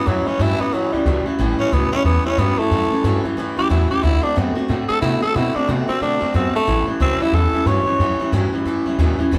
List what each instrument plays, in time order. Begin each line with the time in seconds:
0.06 upright bass F#2, steel-string acoustic guitar A2 E3 G3 C#4 E4, clean electric guitar A2 E3, tenor saxophone F#3
0.26 clean electric guitar A2 E3, steel-string acoustic guitar G3 C#4 E4, tenor saxophone C#4, muted upright bass stroke
0.39 upright bass G2, steel-string acoustic guitar A2 E3 G3 C#4 E4, clean electric guitar A2 F#3, tenor saxophone E4
0.59 clean electric guitar A2 E3, steel-string acoustic guitar G3 C#4 E4, tenor saxophone B3, muted upright bass stroke
0.73 clean electric guitar A2 E3, steel-string acoustic guitar E3 G3 C#4 E4, tenor saxophone F#3
0.92 upright bass C#2, clean electric guitar A2 E3, tenor saxophone G3, steel-string acoustic guitar G3 C#4 E4
1.05 upright bass C#2, clean electric guitar A2 F#3, steel-string acoustic guitar A2 E3 G3 C#4 E4
1.26 clean electric guitar A2 E3, steel-string acoustic guitar G3 C#4 E4, muted upright bass stroke
1.39 upright bass A1, steel-string acoustic guitar A2 E3 G3 C#4 E4, clean electric guitar A2 E3
1.59 clean electric guitar A2 E3, steel-string acoustic guitar G3 C#4 E4, tenor saxophone C#4, muted upright bass stroke
1.72 upright bass C#2, steel-string acoustic guitar A2 E3 G3 C#4 E4, clean electric guitar A2 F#3, tenor saxophone B3
1.91 clean electric guitar A2 E3, steel-string acoustic guitar G3 C#4 E4, tenor saxophone C#4, muted upright bass stroke
2.04 upright bass E2, clean electric guitar A2 E3, steel-string acoustic guitar E3 G3 C#4 E4, tenor saxophone B3
2.24 clean electric guitar A2 E3, steel-string acoustic guitar G3 C#4 E4, tenor saxophone C#4, muted upright bass stroke
2.38 upright bass G2, steel-string acoustic guitar A2 E3 G3 C#4 E4, clean electric guitar A2 F#3, tenor saxophone B3
2.58 clean electric guitar A2 E3, steel-string acoustic guitar G3 C#4 E4, tenor saxophone A3, muted upright bass stroke
2.71 upright bass F#2, steel-string acoustic guitar A2 E3 G3 C#4 E4, clean electric guitar A2 E3
2.91 clean electric guitar A2 E3, steel-string acoustic guitar G3 C#4 E4, muted upright bass stroke
3.04 upright bass G2, steel-string acoustic guitar A2 E3 G3 C#4 E4, clean electric guitar A2 F#3
3.24 clean electric guitar A2 E3, steel-string acoustic guitar G3 C#4 E4, muted upright bass stroke
3.37 upright bass F#2, clean electric guitar A2 E3, steel-string acoustic guitar E3 G3 C#4 E4
3.56 upright bass C#2, clean electric guitar A2 E3, steel-string acoustic guitar G3 C#4 E4, tenor saxophone G4
3.69 upright bass E2, steel-string acoustic guitar A2 E3 G3 C#4 E4, clean electric guitar A2 F#3, tenor saxophone E4
3.89 clean electric guitar A2 E3, steel-string acoustic guitar G3 C#4 E4, tenor saxophone G4, muted upright bass stroke
4.03 upright bass D2, steel-string acoustic guitar D3 A3 C4 F#4, clean electric guitar D3 A3, tenor saxophone E4
4.22 clean electric guitar D3 A3, steel-string acoustic guitar A3 C4 F#4, tenor saxophone D4, muted upright bass stroke
4.36 upright bass F#2, steel-string acoustic guitar D3 A3 C4 F#4, clean electric guitar D3 B3
4.55 clean electric guitar D3 A3, steel-string acoustic guitar A3 C4 F#4, muted upright bass stroke
4.68 upright bass A2, steel-string acoustic guitar D3 A3 C4 F#4, clean electric guitar D3 A3
4.88 clean electric guitar D3 A3, steel-string acoustic guitar A3 C4 F#4, tenor saxophone A4, muted upright bass stroke
5.01 upright bass C3, steel-string acoustic guitar D3 A3 C4 F#4, clean electric guitar D3 B3, tenor saxophone E4
5.21 clean electric guitar D3 A3, steel-string acoustic guitar A3 C4 F#4, tenor saxophone A4, muted upright bass stroke
5.35 upright bass B2, steel-string acoustic guitar D3 A3 C4 F#4, clean electric guitar D3 A3, tenor saxophone E4
5.54 clean electric guitar D3 A3, steel-string acoustic guitar A3 C4 F#4, tenor saxophone D4, muted upright bass stroke
5.68 upright bass C3, steel-string acoustic guitar D3 A3 C4 F#4, clean electric guitar D3 B3
5.88 clean electric guitar D3 A3, steel-string acoustic guitar A3 C4 F#4, tenor saxophone C4, muted upright bass stroke
6.01 upright bass B2, steel-string acoustic guitar D3 A3 C4 F#4, clean electric guitar D3 A3, tenor saxophone D4
6.20 upright bass F#2, clean electric guitar D3 A3, steel-string acoustic guitar A3 C4 F#4
6.34 upright bass F#2, steel-string acoustic guitar D3 A3 C4 F#4, clean electric guitar D3 B3, tenor saxophone C4
6.54 clean electric guitar D3 A3, tenor saxophone A3, steel-string acoustic guitar A3 C4 F#4, muted upright bass stroke
6.67 upright bass A1, steel-string acoustic guitar A2 E3 G3 C#4 E4, clean electric guitar A2 E3
6.87 clean electric guitar A2 E3, steel-string acoustic guitar G3 C#4 E4, muted upright bass stroke
7.00 upright bass C#2, steel-string acoustic guitar A2 E3 G3 C#4 E4, clean electric guitar A2 F#3, tenor saxophone C4
7.20 clean electric guitar A2 E3, steel-string acoustic guitar G3 C#4 E4, tenor saxophone E4, muted upright bass stroke
7.33 upright bass E2, clean electric guitar A2 E3, steel-string acoustic guitar E3 G3 C#4 E4, tenor saxophone A4
7.53 clean electric guitar A2 E3, steel-string acoustic guitar G3 C#4 E4, muted upright bass stroke
7.66 upright bass G2, steel-string acoustic guitar A2 E3 G3 C#4 E4, clean electric guitar A2 F#3, tenor saxophone C#5
7.86 clean electric guitar A2 E3, steel-string acoustic guitar G3 C#4 E4, muted upright bass stroke
7.99 upright bass F#2, clean electric guitar A2 E3, steel-string acoustic guitar A2 E3 G3 C#4 E4
8.19 clean electric guitar A2 E3, steel-string acoustic guitar G3 C#4 E4, muted upright bass stroke
8.32 upright bass G2, steel-string acoustic guitar A2 E3 G3 C#4 E4, clean electric guitar A2 F#3
8.53 clean electric guitar A2 E3, steel-string acoustic guitar G3 C#4 E4
8.65 upright bass F#2, clean electric guitar A2 E3, steel-string acoustic guitar E3 G3 C#4 E4
8.85 upright bass C#2, clean electric guitar A2 E3, steel-string acoustic guitar G3 C#4 E4
8.98 upright bass D#2, steel-string acoustic guitar A2 E3 G3 C#4 E4, clean electric guitar A2 F#3
9.19 clean electric guitar A2 E3, steel-string acoustic guitar G3 C#4 E4, muted upright bass stroke
9.31 upright bass E1, steel-string acoustic guitar E2 B2 E3 G#3 D4 E4, clean electric guitar E2 B2